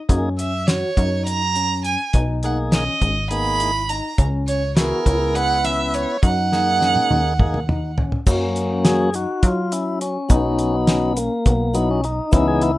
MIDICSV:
0, 0, Header, 1, 6, 480
1, 0, Start_track
1, 0, Tempo, 583090
1, 74, Time_signature, 7, 3, 24, 8
1, 10521, End_track
2, 0, Start_track
2, 0, Title_t, "Violin"
2, 0, Program_c, 0, 40
2, 320, Note_on_c, 0, 76, 74
2, 555, Note_on_c, 0, 73, 85
2, 567, Note_off_c, 0, 76, 0
2, 1034, Note_off_c, 0, 73, 0
2, 1039, Note_on_c, 0, 82, 98
2, 1487, Note_off_c, 0, 82, 0
2, 1527, Note_on_c, 0, 80, 71
2, 1747, Note_off_c, 0, 80, 0
2, 2014, Note_on_c, 0, 78, 64
2, 2119, Note_off_c, 0, 78, 0
2, 2248, Note_on_c, 0, 75, 82
2, 2693, Note_off_c, 0, 75, 0
2, 2723, Note_on_c, 0, 83, 105
2, 3208, Note_on_c, 0, 82, 79
2, 3221, Note_off_c, 0, 83, 0
2, 3446, Note_off_c, 0, 82, 0
2, 3687, Note_on_c, 0, 73, 82
2, 3909, Note_off_c, 0, 73, 0
2, 3931, Note_on_c, 0, 70, 92
2, 4407, Note_on_c, 0, 78, 100
2, 4419, Note_off_c, 0, 70, 0
2, 4649, Note_on_c, 0, 76, 86
2, 4661, Note_off_c, 0, 78, 0
2, 4894, Note_on_c, 0, 73, 84
2, 4907, Note_off_c, 0, 76, 0
2, 5130, Note_off_c, 0, 73, 0
2, 5139, Note_on_c, 0, 78, 98
2, 6539, Note_off_c, 0, 78, 0
2, 10521, End_track
3, 0, Start_track
3, 0, Title_t, "Tonewheel organ"
3, 0, Program_c, 1, 16
3, 71, Note_on_c, 1, 58, 69
3, 72, Note_on_c, 1, 63, 61
3, 72, Note_on_c, 1, 68, 76
3, 241, Note_off_c, 1, 58, 0
3, 242, Note_off_c, 1, 63, 0
3, 242, Note_off_c, 1, 68, 0
3, 2006, Note_on_c, 1, 58, 59
3, 2006, Note_on_c, 1, 68, 62
3, 2010, Note_on_c, 1, 63, 49
3, 2340, Note_off_c, 1, 58, 0
3, 2341, Note_off_c, 1, 68, 0
3, 2342, Note_off_c, 1, 63, 0
3, 2721, Note_on_c, 1, 58, 62
3, 2723, Note_on_c, 1, 63, 58
3, 2723, Note_on_c, 1, 68, 66
3, 3058, Note_off_c, 1, 58, 0
3, 3059, Note_off_c, 1, 63, 0
3, 3060, Note_off_c, 1, 68, 0
3, 3925, Note_on_c, 1, 59, 58
3, 3925, Note_on_c, 1, 68, 65
3, 3926, Note_on_c, 1, 64, 57
3, 4404, Note_off_c, 1, 59, 0
3, 4405, Note_off_c, 1, 64, 0
3, 4414, Note_on_c, 1, 59, 65
3, 4415, Note_on_c, 1, 64, 62
3, 4416, Note_on_c, 1, 71, 73
3, 4597, Note_off_c, 1, 68, 0
3, 5082, Note_off_c, 1, 59, 0
3, 5083, Note_off_c, 1, 64, 0
3, 5083, Note_off_c, 1, 71, 0
3, 5370, Note_on_c, 1, 58, 67
3, 5372, Note_on_c, 1, 68, 73
3, 5374, Note_on_c, 1, 63, 58
3, 6040, Note_off_c, 1, 58, 0
3, 6041, Note_off_c, 1, 63, 0
3, 6041, Note_off_c, 1, 68, 0
3, 6089, Note_on_c, 1, 58, 68
3, 6090, Note_on_c, 1, 63, 62
3, 6091, Note_on_c, 1, 68, 72
3, 6255, Note_off_c, 1, 58, 0
3, 6256, Note_off_c, 1, 63, 0
3, 6256, Note_off_c, 1, 68, 0
3, 6803, Note_on_c, 1, 54, 49
3, 6809, Note_on_c, 1, 58, 45
3, 6811, Note_on_c, 1, 61, 53
3, 7281, Note_on_c, 1, 68, 82
3, 7490, Note_off_c, 1, 54, 0
3, 7492, Note_off_c, 1, 58, 0
3, 7494, Note_off_c, 1, 61, 0
3, 7529, Note_off_c, 1, 68, 0
3, 7536, Note_on_c, 1, 66, 75
3, 7765, Note_on_c, 1, 65, 80
3, 7776, Note_off_c, 1, 66, 0
3, 8005, Note_on_c, 1, 64, 74
3, 8010, Note_off_c, 1, 65, 0
3, 8226, Note_off_c, 1, 64, 0
3, 8245, Note_on_c, 1, 61, 90
3, 8468, Note_on_c, 1, 54, 51
3, 8475, Note_on_c, 1, 59, 49
3, 8481, Note_on_c, 1, 63, 56
3, 8830, Note_off_c, 1, 59, 0
3, 8840, Note_on_c, 1, 59, 78
3, 8859, Note_off_c, 1, 61, 0
3, 9159, Note_off_c, 1, 54, 0
3, 9165, Note_off_c, 1, 63, 0
3, 9197, Note_on_c, 1, 58, 85
3, 9209, Note_off_c, 1, 59, 0
3, 9663, Note_on_c, 1, 54, 46
3, 9668, Note_on_c, 1, 59, 79
3, 9672, Note_on_c, 1, 63, 52
3, 9690, Note_off_c, 1, 58, 0
3, 9788, Note_off_c, 1, 59, 0
3, 9801, Note_on_c, 1, 61, 78
3, 9883, Note_off_c, 1, 54, 0
3, 9888, Note_off_c, 1, 63, 0
3, 9916, Note_on_c, 1, 63, 85
3, 9921, Note_off_c, 1, 61, 0
3, 10139, Note_on_c, 1, 52, 53
3, 10141, Note_off_c, 1, 63, 0
3, 10144, Note_on_c, 1, 59, 48
3, 10151, Note_on_c, 1, 63, 58
3, 10155, Note_on_c, 1, 64, 86
3, 10265, Note_off_c, 1, 64, 0
3, 10271, Note_on_c, 1, 68, 89
3, 10390, Note_on_c, 1, 64, 92
3, 10394, Note_off_c, 1, 68, 0
3, 10463, Note_off_c, 1, 52, 0
3, 10466, Note_off_c, 1, 59, 0
3, 10469, Note_off_c, 1, 63, 0
3, 10521, Note_off_c, 1, 64, 0
3, 10521, End_track
4, 0, Start_track
4, 0, Title_t, "Tine electric piano"
4, 0, Program_c, 2, 4
4, 82, Note_on_c, 2, 61, 79
4, 433, Note_off_c, 2, 61, 0
4, 564, Note_on_c, 2, 66, 68
4, 738, Note_off_c, 2, 66, 0
4, 803, Note_on_c, 2, 63, 68
4, 1155, Note_off_c, 2, 63, 0
4, 1286, Note_on_c, 2, 61, 64
4, 1637, Note_off_c, 2, 61, 0
4, 1768, Note_on_c, 2, 63, 84
4, 2119, Note_off_c, 2, 63, 0
4, 2248, Note_on_c, 2, 61, 70
4, 2600, Note_off_c, 2, 61, 0
4, 2729, Note_on_c, 2, 59, 75
4, 2904, Note_off_c, 2, 59, 0
4, 2970, Note_on_c, 2, 64, 69
4, 3144, Note_off_c, 2, 64, 0
4, 3211, Note_on_c, 2, 63, 67
4, 3385, Note_off_c, 2, 63, 0
4, 3448, Note_on_c, 2, 61, 79
4, 3800, Note_off_c, 2, 61, 0
4, 3925, Note_on_c, 2, 66, 72
4, 4102, Note_off_c, 2, 66, 0
4, 4162, Note_on_c, 2, 64, 69
4, 4516, Note_off_c, 2, 64, 0
4, 4646, Note_on_c, 2, 61, 70
4, 4999, Note_off_c, 2, 61, 0
4, 5132, Note_on_c, 2, 63, 77
4, 5482, Note_off_c, 2, 63, 0
4, 5608, Note_on_c, 2, 61, 74
4, 5960, Note_off_c, 2, 61, 0
4, 6088, Note_on_c, 2, 58, 73
4, 6263, Note_off_c, 2, 58, 0
4, 6331, Note_on_c, 2, 63, 66
4, 6505, Note_off_c, 2, 63, 0
4, 6570, Note_on_c, 2, 61, 67
4, 6745, Note_off_c, 2, 61, 0
4, 6814, Note_on_c, 2, 61, 80
4, 7163, Note_off_c, 2, 61, 0
4, 7286, Note_on_c, 2, 66, 71
4, 7461, Note_off_c, 2, 66, 0
4, 7529, Note_on_c, 2, 63, 68
4, 7879, Note_off_c, 2, 63, 0
4, 8005, Note_on_c, 2, 61, 66
4, 8356, Note_off_c, 2, 61, 0
4, 8481, Note_on_c, 2, 63, 82
4, 8833, Note_off_c, 2, 63, 0
4, 8959, Note_on_c, 2, 61, 76
4, 9310, Note_off_c, 2, 61, 0
4, 9435, Note_on_c, 2, 59, 76
4, 9611, Note_off_c, 2, 59, 0
4, 9673, Note_on_c, 2, 64, 70
4, 9849, Note_off_c, 2, 64, 0
4, 9914, Note_on_c, 2, 63, 71
4, 10089, Note_off_c, 2, 63, 0
4, 10153, Note_on_c, 2, 61, 86
4, 10503, Note_off_c, 2, 61, 0
4, 10521, End_track
5, 0, Start_track
5, 0, Title_t, "Analog synth bass"
5, 0, Program_c, 3, 38
5, 77, Note_on_c, 3, 42, 88
5, 693, Note_off_c, 3, 42, 0
5, 802, Note_on_c, 3, 42, 92
5, 1622, Note_off_c, 3, 42, 0
5, 1763, Note_on_c, 3, 35, 92
5, 2378, Note_off_c, 3, 35, 0
5, 2485, Note_on_c, 3, 32, 81
5, 3305, Note_off_c, 3, 32, 0
5, 3444, Note_on_c, 3, 37, 95
5, 4059, Note_off_c, 3, 37, 0
5, 4168, Note_on_c, 3, 37, 91
5, 4986, Note_off_c, 3, 37, 0
5, 5128, Note_on_c, 3, 42, 94
5, 5741, Note_off_c, 3, 42, 0
5, 5849, Note_on_c, 3, 39, 80
5, 6666, Note_off_c, 3, 39, 0
5, 6806, Note_on_c, 3, 42, 92
5, 7623, Note_off_c, 3, 42, 0
5, 7764, Note_on_c, 3, 54, 91
5, 8376, Note_off_c, 3, 54, 0
5, 8479, Note_on_c, 3, 35, 103
5, 9295, Note_off_c, 3, 35, 0
5, 9436, Note_on_c, 3, 35, 92
5, 10048, Note_off_c, 3, 35, 0
5, 10148, Note_on_c, 3, 37, 98
5, 10521, Note_off_c, 3, 37, 0
5, 10521, End_track
6, 0, Start_track
6, 0, Title_t, "Drums"
6, 76, Note_on_c, 9, 36, 97
6, 77, Note_on_c, 9, 42, 77
6, 158, Note_off_c, 9, 36, 0
6, 159, Note_off_c, 9, 42, 0
6, 320, Note_on_c, 9, 42, 54
6, 402, Note_off_c, 9, 42, 0
6, 558, Note_on_c, 9, 38, 97
6, 558, Note_on_c, 9, 42, 75
6, 640, Note_off_c, 9, 38, 0
6, 640, Note_off_c, 9, 42, 0
6, 799, Note_on_c, 9, 36, 71
6, 801, Note_on_c, 9, 42, 53
6, 882, Note_off_c, 9, 36, 0
6, 884, Note_off_c, 9, 42, 0
6, 1043, Note_on_c, 9, 42, 73
6, 1125, Note_off_c, 9, 42, 0
6, 1280, Note_on_c, 9, 42, 56
6, 1363, Note_off_c, 9, 42, 0
6, 1519, Note_on_c, 9, 42, 56
6, 1601, Note_off_c, 9, 42, 0
6, 1756, Note_on_c, 9, 42, 67
6, 1760, Note_on_c, 9, 36, 97
6, 1839, Note_off_c, 9, 42, 0
6, 1843, Note_off_c, 9, 36, 0
6, 1999, Note_on_c, 9, 42, 50
6, 2081, Note_off_c, 9, 42, 0
6, 2240, Note_on_c, 9, 38, 94
6, 2240, Note_on_c, 9, 42, 69
6, 2322, Note_off_c, 9, 38, 0
6, 2322, Note_off_c, 9, 42, 0
6, 2483, Note_on_c, 9, 36, 72
6, 2483, Note_on_c, 9, 42, 50
6, 2565, Note_off_c, 9, 36, 0
6, 2566, Note_off_c, 9, 42, 0
6, 2722, Note_on_c, 9, 42, 73
6, 2804, Note_off_c, 9, 42, 0
6, 2965, Note_on_c, 9, 42, 60
6, 3047, Note_off_c, 9, 42, 0
6, 3203, Note_on_c, 9, 42, 54
6, 3286, Note_off_c, 9, 42, 0
6, 3443, Note_on_c, 9, 42, 75
6, 3444, Note_on_c, 9, 36, 97
6, 3525, Note_off_c, 9, 42, 0
6, 3526, Note_off_c, 9, 36, 0
6, 3686, Note_on_c, 9, 42, 56
6, 3769, Note_off_c, 9, 42, 0
6, 3923, Note_on_c, 9, 38, 101
6, 3923, Note_on_c, 9, 42, 77
6, 4006, Note_off_c, 9, 38, 0
6, 4006, Note_off_c, 9, 42, 0
6, 4166, Note_on_c, 9, 36, 69
6, 4168, Note_on_c, 9, 42, 58
6, 4248, Note_off_c, 9, 36, 0
6, 4250, Note_off_c, 9, 42, 0
6, 4407, Note_on_c, 9, 42, 74
6, 4489, Note_off_c, 9, 42, 0
6, 4647, Note_on_c, 9, 38, 33
6, 4647, Note_on_c, 9, 42, 60
6, 4729, Note_off_c, 9, 38, 0
6, 4729, Note_off_c, 9, 42, 0
6, 4889, Note_on_c, 9, 42, 60
6, 4971, Note_off_c, 9, 42, 0
6, 5127, Note_on_c, 9, 36, 102
6, 5127, Note_on_c, 9, 42, 70
6, 5209, Note_off_c, 9, 36, 0
6, 5209, Note_off_c, 9, 42, 0
6, 5369, Note_on_c, 9, 38, 50
6, 5451, Note_off_c, 9, 38, 0
6, 5608, Note_on_c, 9, 38, 57
6, 5690, Note_off_c, 9, 38, 0
6, 5728, Note_on_c, 9, 48, 48
6, 5811, Note_off_c, 9, 48, 0
6, 5850, Note_on_c, 9, 48, 60
6, 5933, Note_off_c, 9, 48, 0
6, 6087, Note_on_c, 9, 36, 94
6, 6087, Note_on_c, 9, 47, 72
6, 6170, Note_off_c, 9, 36, 0
6, 6170, Note_off_c, 9, 47, 0
6, 6208, Note_on_c, 9, 45, 63
6, 6290, Note_off_c, 9, 45, 0
6, 6330, Note_on_c, 9, 45, 83
6, 6412, Note_off_c, 9, 45, 0
6, 6567, Note_on_c, 9, 43, 82
6, 6649, Note_off_c, 9, 43, 0
6, 6686, Note_on_c, 9, 43, 73
6, 6768, Note_off_c, 9, 43, 0
6, 6805, Note_on_c, 9, 36, 94
6, 6805, Note_on_c, 9, 49, 88
6, 6808, Note_on_c, 9, 82, 54
6, 6887, Note_off_c, 9, 36, 0
6, 6887, Note_off_c, 9, 49, 0
6, 6891, Note_off_c, 9, 82, 0
6, 7046, Note_on_c, 9, 42, 56
6, 7128, Note_off_c, 9, 42, 0
6, 7282, Note_on_c, 9, 38, 97
6, 7282, Note_on_c, 9, 42, 78
6, 7365, Note_off_c, 9, 38, 0
6, 7365, Note_off_c, 9, 42, 0
6, 7522, Note_on_c, 9, 82, 44
6, 7523, Note_on_c, 9, 42, 56
6, 7604, Note_off_c, 9, 82, 0
6, 7605, Note_off_c, 9, 42, 0
6, 7761, Note_on_c, 9, 42, 79
6, 7762, Note_on_c, 9, 36, 99
6, 7764, Note_on_c, 9, 82, 17
6, 7843, Note_off_c, 9, 42, 0
6, 7844, Note_off_c, 9, 36, 0
6, 7846, Note_off_c, 9, 82, 0
6, 8001, Note_on_c, 9, 42, 62
6, 8003, Note_on_c, 9, 82, 46
6, 8084, Note_off_c, 9, 42, 0
6, 8086, Note_off_c, 9, 82, 0
6, 8242, Note_on_c, 9, 42, 61
6, 8324, Note_off_c, 9, 42, 0
6, 8477, Note_on_c, 9, 42, 75
6, 8477, Note_on_c, 9, 82, 60
6, 8479, Note_on_c, 9, 36, 103
6, 8559, Note_off_c, 9, 82, 0
6, 8560, Note_off_c, 9, 42, 0
6, 8561, Note_off_c, 9, 36, 0
6, 8715, Note_on_c, 9, 42, 57
6, 8797, Note_off_c, 9, 42, 0
6, 8951, Note_on_c, 9, 38, 96
6, 8951, Note_on_c, 9, 42, 73
6, 9034, Note_off_c, 9, 38, 0
6, 9034, Note_off_c, 9, 42, 0
6, 9192, Note_on_c, 9, 42, 54
6, 9195, Note_on_c, 9, 82, 45
6, 9275, Note_off_c, 9, 42, 0
6, 9278, Note_off_c, 9, 82, 0
6, 9431, Note_on_c, 9, 82, 19
6, 9432, Note_on_c, 9, 42, 72
6, 9433, Note_on_c, 9, 36, 100
6, 9513, Note_off_c, 9, 82, 0
6, 9514, Note_off_c, 9, 42, 0
6, 9515, Note_off_c, 9, 36, 0
6, 9666, Note_on_c, 9, 82, 46
6, 9669, Note_on_c, 9, 42, 56
6, 9748, Note_off_c, 9, 82, 0
6, 9752, Note_off_c, 9, 42, 0
6, 9909, Note_on_c, 9, 42, 52
6, 9992, Note_off_c, 9, 42, 0
6, 10143, Note_on_c, 9, 82, 55
6, 10147, Note_on_c, 9, 42, 69
6, 10149, Note_on_c, 9, 36, 99
6, 10225, Note_off_c, 9, 82, 0
6, 10230, Note_off_c, 9, 42, 0
6, 10231, Note_off_c, 9, 36, 0
6, 10385, Note_on_c, 9, 42, 54
6, 10467, Note_off_c, 9, 42, 0
6, 10521, End_track
0, 0, End_of_file